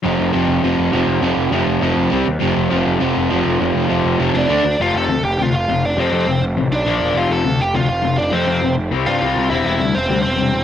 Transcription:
X:1
M:4/4
L:1/8
Q:1/4=203
K:Flyd
V:1 name="Lead electric guitar"
z8 | z8 | z8 | z4 z [Dd]3 |
[Ff] [Aa]2 [Gg] [Ff] [Ff]2 [Dd] | [Cc]3 z2 [Dd]3 | [Ff] [Aa]2 [Gg] [Ff] [Ff]2 [Dd] | [Cc]3 z2 [Ff]3 |
[Ee] [Ee]2 [Cc]2 [Cc]3 |]
V:2 name="Distorted electric guitar" clef=bass
[F,,C,F,]2 [F,,C,F,]2 [F,,C,F,]2 [F,,C,F,]2 | [F,,C,F,]2 [F,,C,F,]2 [F,,C,F,]2 [C,G,C] z | [F,,C,F,]2 [F,,C,F,]2 [F,,C,F,]2 [F,,C,F,]2 | [F,,C,F,]2 [F,,C,F,]2 [F,,C,F,]2 [D,A,D] z |
[F,,C,F,]2 [F,,C,] z [F,,C,] z [F,,C,] z | [F,,C,F,]2 [F,,C,] z [F,,C,] z [_B,,F,_B,]2 | [F,,C,F,]2 [F,,C,] z [F,,C,] z [F,,C,] z | [F,,C,F,]2 [F,,C,] z [C,G,C]2 [C,G,C]2 |
[C,G,C]2 [C,G,] z [C,G,] z [C,G,] z |]
V:3 name="Overdriven electric guitar" clef=bass
[F,,C,F,]2 [F,,C,F,]2 [F,,C,F,]2 [F,,C,F,]2 | [F,,C,F,]2 [F,,C,F,]2 [F,,C,F,]2 [C,G,C] z | [F,,C,F,]2 [F,,C,F,]2 [F,,C,F,]2 [F,,C,F,]2 | [F,,C,F,]2 [F,,C,F,]2 [F,,C,F,]2 [D,A,D] z |
z8 | z8 | z8 | z8 |
z8 |]
V:4 name="Picked electric bass" clef=bass
F,,, F,,, F,,, F,,, F,,, F,,, F,,, F,,, | F,,, F,,, F,,, F,,, F,,, F,,, C,, _E,, | F,,, F,,, F,,, F,,, F,,, F,,, F,,, F,,, | F,,, F,,, F,,, F,,, F,,, F,,, D,, D,, |
F,,, F,,, D,, F,,, D,, F,,, F,,,2 | F,, F,, F,,, F,,, A,,, B,,, _B,,, E,,, | F,,, F,,, D,, F,,, D,, F,,, F,,,2 | F,, F,, F,,, F,,, C,, G,, C,, C,, |
E,,, E,,, D,, E,,, D,, E,,, E,,,2 |]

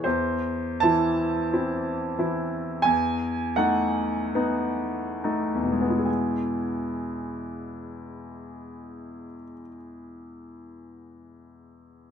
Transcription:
X:1
M:4/4
L:1/8
Q:1/4=40
K:E
V:1 name="Grand piano"
=c a3 g f3 | [E,,B,,G,B,EGg]8 |]
V:2 name="Grand piano"
E,, [E,E] [=CE] [E,E] E,, [A,D] [B,D] [A,D] | z8 |]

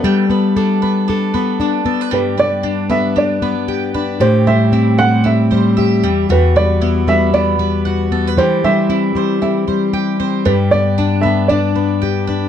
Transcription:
X:1
M:4/4
L:1/16
Q:"Swing 16ths" 1/4=115
K:G
V:1 name="Upright piano"
z16 | B2 d4 e2 d6 z2 | c2 e4 f2 e6 z2 | B2 d4 e2 d6 z2 |
c2 e6 e6 z2 | B2 d4 e2 d6 z2 |]
V:2 name="Mandolin"
[A,g]2 B2 D2 B2 D2 B2 D2 A B | G,2 B2 D2 B2 D2 B2 g2 B2 | G,2 c2 E2 c2 E2 c2 e2 G,2 | G,2 B2 E2 B2 E2 B2 f2 A B |
G,2 c2 E2 c2 E2 c2 g2 c2 | G,2 B2 D2 B2 D2 B2 g2 B2 |]
V:3 name="Steel-string acoustic guitar"
G,2 B,2 A2 B,2 A2 B,2 D2 B,2 | [G,,G]2 B,2 D2 B,2 D2 B,2 G2 D2 | [A,,G]2 G,2 C2 G,2 C2 G,2 G2 E,,2 | [E,,F]2 G,2 B,2 G,2 B,2 G,2 F2 B,2 |
[E,G]2 G,2 C2 G,2 C2 G,2 G2 C2 | [G,,G]2 B,2 D2 B,2 D2 B,2 G2 D2 |]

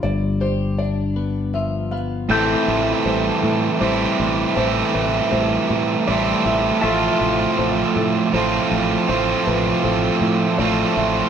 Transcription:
X:1
M:3/4
L:1/8
Q:1/4=80
K:Am
V:1 name="Felt piano"
d c d2 e f | A2 c A c2 | c B c2 d e | A2 c A c2 |
c B c2 d e |]
V:2 name="Pedal steel guitar"
[G,DFAd]6 | [CEAg]6- | [CEAg]6 | [Fea]6- |
[Fea]6 |]
V:3 name="Distorted electric guitar"
z6 | [A,,E,A,CE]4 [A,,E,A,CE]2 | [A,,E,A,CE]4 [A,,E,A,CE]2 | [A,,F,A,CF]4 [A,,F,A,CF]2 |
[A,,F,A,CF]4 [A,,F,A,CF]2 |]
V:4 name="Clean electric guitar" clef=bass
[G,,F,D] G D B, F, B, | A,, E, G, E G, E, | A,, E, G, E G, E, | A,, F, A,2 A, F, |
A,, F, A,2 A, F, |]
V:5 name="Fingered electric bass" clef=bass
G,,,6 | A,,, A,,, A,,, A,, A,,, A,,, | A,,, A,,, A,,, A,, A,,, A,,, | A,,, A,,, A,,, A,, A,,, A,,, |
A,,, A,,, A,,, A,, A,,, A,,, |]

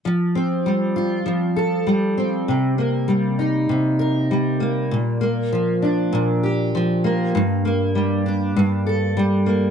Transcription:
X:1
M:4/4
L:1/8
Q:1/4=99
K:Fmix
V:1 name="Steel-string acoustic guitar" clef=bass
F, C G, F F, A G, C | C, B, G, E C, B G, B, | B,, B, F, D B,, G F, B, | G,, B, G, D G,, A G, B, |]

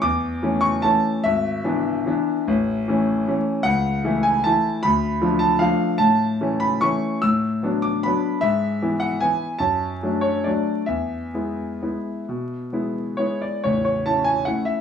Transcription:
X:1
M:3/4
L:1/8
Q:1/4=148
K:A
V:1 name="Grand piano"
d'3 c' a2 | e6- | e4- e z | f3 g a2 |
b3 a =f2 | a3 b c'2 | e'3 d' b2 | e3 f g2 |
a3 c d2 | e6- | e4 c d | c c a g f e |]
V:2 name="Grand piano"
E,,2 [E,A,C]2 [E,A,C]2 | G,,,2 [E,B,D]2 [E,B,D]2 | A,,,2 [E,A,C]2 [E,A,C]2 | C,,2 [E,A,E]2 [E,A,E]2 |
D,,2 [=F,A,D]2 [F,A,D]2 | A,,2 [E,A,C]2 [E,A,C]2 | A,,2 [F,B,D]2 [F,B,D]2 | G,,2 [E,B,E]2 [E,B,E]2 |
F,,2 [F,A,D]2 [F,A,D]2 | E,,2 [G,B,E]2 [G,B,E]2 | B,,2 [G,B,E]2 [G,B,E]2 | [A,,,,A,,,]2 [CE]2 [A,CE]2 |]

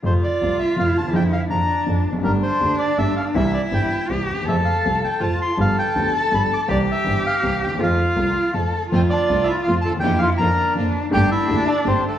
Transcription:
X:1
M:3/4
L:1/16
Q:1/4=163
K:F
V:1 name="Bandoneon"
c2 d4 e2 f2 a2 | g2 f2 b4 z4 | B2 c4 d2 e2 f2 | e2 d2 g4 z4 |
e2 f4 g2 a2 c'2 | f2 g4 a2 =b2 d'2 | d2 e4 f4 g2 | f8 z4 |
[Cc]2 [Dd]4 [Ee]2 [Ff]2 [Aa]2 | [Gg]2 [Ff]2 [Bb]4 z4 | [Gg]2 [Ee]4 [Dd]2 [Cc]2 [A,A]2 |]
V:2 name="Cello"
F12 | E4 D8 | D12 | E8 G4 |
A8 F4 | A12 | G12 | F8 A4 |
F12 | E4 D8 | D12 |]
V:3 name="String section"
z12 | z12 | z12 | z12 |
z12 | z12 | z12 | z12 |
[A,CF]2 z2 [A,CF]2 z2 [A,CF]2 z2 | [B,DF]2 z2 [B,DF]2 z2 [B,DF]2 z2 | [A,B,G]2 z2 [A,B,G]2 z2 [A,B,G]2 z2 |]
V:4 name="Upright piano" clef=bass
[F,,C,F,A,F]2 z2 [C,,C,F,A,F]2 z2 [F,,C,F,A,F]2 z/2 D,,/2 _E,,/2 =E,,/2 | [F,,D,F,B,F]2 z2 [F,,D,F,B,F]2 z2 [F,,D,F,B,F]2 z/2 E,,/2 F,,/2 _G,,/2 | [G,,,G,,D,A,B,G]2 z2 [D,,D,A,B,G]2 z2 [G,,,G,,D,A,B,G]2 z2 | [C,,C,E,B,CG]2 z2 [G,,,G,,E,B,CG]2 z2 [C,,C,E,B,CG]2 z/2 D,,/2 _E,,/2 =E,,/2 |
[F,,F,A,CA]2 z2 [C,,C,F,A,CA]2 z2 [F,,F,A,CA]2 z2 | [G,,,G,,F,=B,DG]2 z2 [D,,D,F,B,DG]2 z2 [G,,,G,,F,B,DG]2 z2 | [C,,C,E,B,CG]2 z2 [G,,,G,,E,B,CG]2 z2 [C,,C,E,B,CG]2 z/2 D,,/2 _E,,/2 =E,,/2 | [F,,F,A,CA]2 z2 [C,,C,F,A,CA]2 z2 [F,,F,A,CA]2 z2 |
[F,,F,A,CA]2 z2 [C,,C,F,A,CA]2 z2 [F,,F,A,CA]2 z/2 D,,/2 _E,,/2 =E,,/2 | [F,,D,F,B,F]2 z2 [F,,D,F,B,F]2 z2 [F,,D,F,B,F]2 z2 | [G,,,G,,D,A,B,G]2 z2 [D,,D,A,B,G]2 z2 [G,,,G,,D,A,B,G]2 z2 |]
V:5 name="Double bass" clef=bass
F,,2 z2 C,,2 z2 F,,2 _E,,2 | F,,2 z2 F,,2 z2 F,,2 F,,,2 | G,,,2 z2 D,,2 z2 G,,,2 z2 | C,,2 z2 G,,,2 z2 C,,2 _E,,2 |
F,,2 z2 C,,2 z2 F,,2 z2 | G,,,2 z2 D,,2 z2 G,,,2 z2 | C,,2 z2 G,,,2 z2 C,,2 _E,,2 | F,,2 z2 C,,2 z2 F,,2 z2 |
F,,2 z2 C,,2 z2 F,,2 _E,,2 | F,,2 z2 F,,2 z2 F,,2 z2 | G,,,2 z2 D,,2 z2 G,,,2 z2 |]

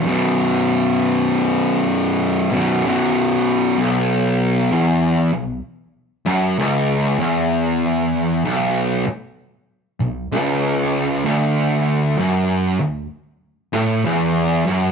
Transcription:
X:1
M:4/4
L:1/8
Q:"Swing" 1/4=64
K:Bm
V:1 name="Distorted electric guitar" clef=bass
[B,,,F,,B,,]4- [B,,,F,,B,,] [B,,,F,,B,,] [B,,,F,,B,,]2 | B,,,2 E,, B,,, z F,, C,, E,,- | E,,2 B,,, z2 B,,, C,,2 | D,,2 F,, D,, z A,, E,, F,, |]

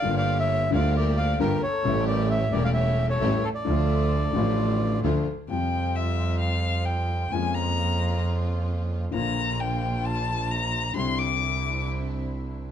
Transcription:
X:1
M:4/4
L:1/16
Q:1/4=132
K:Dm
V:1 name="Bandoneon"
f f2 e3 f2 d2 f2 B2 ^c2- | ^c2 d2 e2 d f e3 c3 A d- | d12 z4 | [K:Bblyd] z16 |
z16 | z16 | z16 |]
V:2 name="Violin"
d d2 ^c3 d2 B2 d2 G2 A2- | A2 B2 ^c2 B d c3 A3 F A- | A12 z4 | [K:Bblyd] g4 e4 f4 g4 |
_a2 b6 z8 | b4 g4 a4 b4 | c'2 d'6 z8 |]
V:3 name="String section"
[B,FG]6 [B,FG]6 [B,FG]2 z2 | [A,^CG]6 [A,CG]6 [A,CG]2 z2 | [A,DF]6 [A,DF]6 [A,DF]2 z2 | [K:Bblyd] [G,CF]16 |
[B,_DF]16 | [B,DF]16 | [CDE]16 |]
V:4 name="Grand piano" clef=bass
[G,,,G,,D,G,B,F]6 [D,,D,G,B,F]6 [G,,,G,,D,G,B,F]2 z2 | [A,,,A,,^C,G,A,E]6 [E,,,E,,C,G,A,E]6 [A,,,A,,C,G,A,E]2 z2 | [D,,D,F,A,F]6 [A,,,A,,D,F,A,F]6 [D,,D,F,A,F]2 z2 | [K:Bblyd] [F,,C,F,G,F]16 |
[F,,_D,F,_A,B,F]16 | [B,,,B,,D,F,B,F]16 | [C,,C,D,G,CE]16 |]
V:5 name="Double bass" clef=bass
G,,,6 D,,6 G,,,2 z2 | A,,,6 E,,,6 A,,,2 z2 | D,,6 A,,,6 D,,2 z2 | [K:Bblyd] F,,16 |
F,,16 | B,,,16 | C,,16 |]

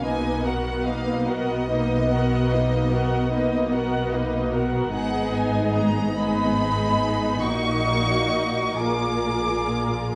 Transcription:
X:1
M:12/8
L:1/8
Q:3/8=48
K:Cblyd
V:1 name="Violin section"
a ^f =f ^d8 z | g a b c'3 d'3 =d'3 |]
V:2 name="Violin section"
[=B^d] [^A^f] [Bd] [Af] [Bd] [Af] [Bd] [Af] [Bd] [Af] [Bd] [Af] | [Ae]3 [Ae]3 [Ge]3 [AB]3 |]
V:3 name="Viola section"
[^A,^D] [=B,^F] [A,D] [B,F] [A,D] [B,F] [A,D] [B,F] [A,D] [B,F] [A,D] [B,F] | [CE]3 [CE]3 [B,E]3 [B,F]3 |]
V:4 name="Cello section" clef=bass
=B,,12 | A,,6 B,,3 B,,3 |]
V:5 name="Double bass section" clef=bass
=B,,,12 | A,,,6 B,,,3 B,,,3 |]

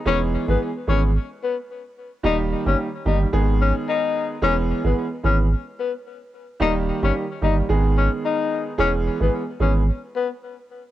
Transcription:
X:1
M:4/4
L:1/16
Q:"Swing 16ths" 1/4=110
K:Elyd
V:1 name="Tenor saxophone"
C z2 B, z2 C z3 B, z4 z | D z2 C z2 D z3 C z D3 z | C z2 B, z2 C z3 B, z4 z | D z2 C z2 D z3 C z D3 z |
C z2 B, z2 C z3 B, z4 z |]
V:2 name="Grand piano"
[E,G,B,G]3 [E,G,B,G] z2 [E,G,B,G]2 z8 | [D,=G,A,=G]3 [D,G,A,G] z2 [D,G,A,G]2 [D,^G,B,^G]6- [D,G,B,G] z | [E,G,B,G]3 [E,G,B,G] z2 [E,G,B,G]2 z8 | [D,=G,A,=G]3 [D,G,A,G] z2 [D,G,A,G]2 [D,^G,B,^G]6- [D,G,B,G] z |
[E,G,B,G]3 [E,G,B,G] z2 [E,G,B,G]2 z8 |]
V:3 name="Sub bass" clef=bass
E,,,3 G,,, z2 G,,,3 z6 z | D,,,3 =G,,, z2 G,,,2 ^G,,,4 z4 | E,,,3 G,,, z2 G,,,3 z6 z | D,,,3 =G,,, z2 G,,,2 ^G,,,4 z4 |
E,,,3 G,,, z2 G,,,3 z6 z |]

